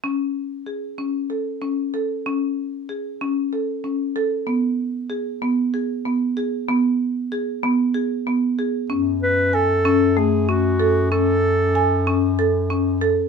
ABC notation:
X:1
M:7/8
L:1/8
Q:1/4=95
K:F#m
V:1 name="Clarinet"
z6 z | z6 z | z6 z | z6 z |
z B A2 G F2 | A4 z3 |]
V:2 name="Marimba"
C2 G C A C A | C2 G C A C A | B,2 G B, G B, G | B,2 G B, G B, G |
C2 g C A, C A | C2 g C A C A |]
V:3 name="Bass clarinet" clef=bass
z6 z | z6 z | z6 z | z6 z |
F,,6- F,,- | F,,6- F,, |]